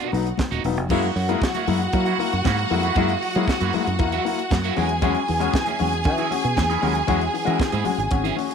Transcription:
Already playing: F#4 F#5
0.00 B2 B3 D#4 F#4, closed hi-hat
0.12 B1 F#3 B3 D#4, muted clean electric guitar stroke, open hi-hat, muted conga, high conga
0.25 muted clean electric guitar stroke, closed hi-hat
0.38 B3 D#4, muted clean electric guitar stroke, kick, snare, clap, high conga
0.51 D#1 B2 B3 D#4 F#4, closed hi-hat
0.64 E1 F#3 B3 D#4, muted clean electric guitar stroke, open hi-hat, muted conga, low conga
0.77 F1, muted clean electric guitar stroke, closed hi-hat
0.89 F#2 G#3 A#3 E4 F#4 F#5, kick, crash, muted conga, low conga
1.03 muted clean electric guitar stroke, closed hi-hat
1.16 F#2 F#3, muted clean electric guitar stroke, open hi-hat
1.29 G#3 A#3 E4 G#4, closed hi-hat
1.42 F#3, muted clean electric guitar stroke, kick, snare, clap
1.55 A#3 E4 F#4, closed hi-hat, high conga
1.67 F#2 G#3 A#3 E4, muted clean electric guitar stroke, open hi-hat, high conga, low conga
1.81 A#3 E4, muted clean electric guitar stroke, closed hi-hat
1.93 F#3 A#3 E4, muted clean electric guitar stroke, kick, closed hi-hat, muted conga
2.06 F#3 A#3 E4 F#4, closed hi-hat
2.18 A#3 E4, muted clean electric guitar stroke, open hi-hat, muted conga, high conga
2.32 F#2, muted clean electric guitar stroke, closed hi-hat
2.44 G#2 A#3 E4 F#4, kick, snare, clap, muted conga, high conga
2.58 F#3, muted clean electric guitar stroke, closed hi-hat
2.70 F2 G#3 A#3 E4, muted clean electric guitar stroke, open hi-hat, muted conga, low conga
2.83 A#3 E4 F#4, closed hi-hat
2.95 F#2 G#3 A#3 E4 F#4, kick, closed hi-hat, muted conga, low conga
3.09 muted clean electric guitar stroke, closed hi-hat
3.21 F#3, muted clean electric guitar stroke, open hi-hat, muted conga
3.35 F#3 G#3 A#3 E4 G#4, closed hi-hat
3.48 F#3, muted clean electric guitar stroke, kick, snare, clap
3.60 F#2 A#3 E4 F#4, closed hi-hat, high conga
3.73 G#3 A#3 E4, muted clean electric guitar stroke, open hi-hat, muted conga, high conga, low conga
3.86 F#2 A#3 E4, muted clean electric guitar stroke, closed hi-hat
3.99 E2 A#3 E4, muted clean electric guitar stroke, kick, closed hi-hat, muted conga
4.12 F#3 A#3 E4 F#4, closed hi-hat
4.25 A#3 E4, muted clean electric guitar stroke, open hi-hat, high conga
4.38 muted clean electric guitar stroke, closed hi-hat
4.51 F#2 A#3 E4, muted clean electric guitar stroke, kick, snare, clap, muted conga, high conga
4.63 F#3 A#3 E4 F#4, closed hi-hat
4.76 E2 G#3 C#4 E4 F#4 G#4 A#4 G#5, open hi-hat, muted conga, low conga
4.89 muted clean electric guitar stroke, closed hi-hat
5.01 G#3 C#4 E4 F#4 G#4, kick, closed hi-hat, muted conga, low conga
5.15 muted clean electric guitar stroke, closed hi-hat
5.28 E2 E3, muted clean electric guitar stroke, open hi-hat
5.40 G#3 C#4 E4 F#4 A#4, closed hi-hat
5.53 E3, muted clean electric guitar stroke, kick, snare, clap, muted conga
5.66 C#4 E4 G#4, closed hi-hat, high conga
5.79 E2 G#3 C#4 F#4, muted clean electric guitar stroke, open hi-hat, muted conga, high conga, low conga
5.92 C#4 F#4, muted clean electric guitar stroke, closed hi-hat
6.04 E3 C#4 F#4, muted clean electric guitar stroke, kick, closed hi-hat
6.18 E3 C#4 E4 G#4, closed hi-hat
6.31 C#4 F#4, muted clean electric guitar stroke, open hi-hat, high conga
6.44 B2, muted clean electric guitar stroke, closed hi-hat
6.57 E2 C#4 F#4, muted clean electric guitar stroke, kick, snare, clap, high conga
6.70 E3 C#4 E4 G#4, closed hi-hat
6.82 D#2 G#3 C#4 E4 F#4 A#4, open hi-hat, muted conga, low conga
6.95 muted clean electric guitar stroke, closed hi-hat
7.07 E2 G#3 C#4 E4 F#4 G#4, kick, closed hi-hat, muted conga, low conga
7.21 muted clean electric guitar stroke, closed hi-hat
7.33 E3, muted clean electric guitar stroke, open hi-hat
7.45 E3 G#3 C#4 E4 F#4 A#4, closed hi-hat
7.59 E3, muted clean electric guitar stroke, kick, snare, clap, muted conga
7.72 G#2 C#4 E4 G#4, closed hi-hat, high conga
7.84 G#3 C#4 F#4, muted clean electric guitar stroke, open hi-hat, muted conga, high conga, low conga
7.98 G#1 C#4 F#4, muted clean electric guitar stroke, closed hi-hat
8.11 G#1 C#4 F#4, muted clean electric guitar stroke, kick, closed hi-hat
8.23 E3 C#4 E4 G#4, closed hi-hat
8.36 C#4 F#4, muted clean electric guitar stroke, open hi-hat, high conga
8.50 muted clean electric guitar stroke, closed hi-hat

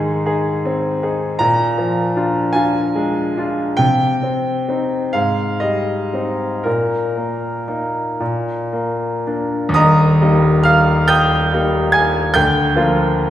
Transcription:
Already playing: G#2 D#3 D#4 G#4 C6
0.26 D#4 G#4
0.65 C4
1.03 D#4 G#4
1.39 A#2 A#5
1.78 F3
2.16 D4 F4
2.53 D4 F4 G#5
2.95 G#3
3.37 D4 F4
3.77 C3 G5
4.23 C4
4.69 C4 D#4
5.13 G#2 F5
5.60 G3 D#5
6.14 C4 D#4
6.63 A#2 A#4
7.17 A#3
7.68 A#3 D#4
8.20 A#2
8.73 A#3
9.27 A#3 D4
9.69 D#2
9.74 D#1 D#5 A#5 D#6
10.22 G3 A#3 D#4
10.63 F5 F6
11.08 G5 D#6 G6
11.53 G3 A#3 D#4
11.92 G#5 G#6
12.34 D2 G5 G6
12.75 F3 A#3 F4

